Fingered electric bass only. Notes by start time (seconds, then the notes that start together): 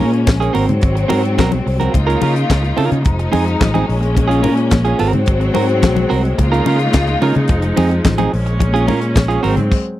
0.00 A#2
0.28 A#1
0.55 G#1
0.69 G#2
0.83 G#1
1.11 G#2
1.39 B1
1.66 C2
1.94 C#2
2.22 C#3
2.50 C#2
2.78 C#3
2.92 C#3
3.06 F1
3.34 F2
3.62 A1
3.89 A#1
4.45 A#2
4.72 A#1
5.01 G#1
5.15 G#2
5.28 G#1
5.56 G#2
5.83 B1
6.11 C2
6.39 C#2
6.66 C#3
6.94 C#2
7.22 C#3
7.36 C#3
7.49 F1
7.78 F2
8.05 A1
8.33 A#1
8.89 A#2
9.16 A#1
9.44 G#1
9.58 G#2